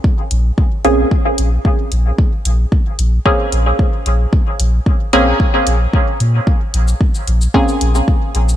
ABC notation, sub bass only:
X:1
M:4/4
L:1/8
Q:1/4=112
K:A#phr
V:1 name="Sub bass" clef=bass
z A,,, z A,,, z A,,, z A,,, | z A,,, z A,,, z A,,, z A,,, | z A,,, z A,,, z A,,, z A,, | z A,,, z A,,, z A,,, z A,,, |]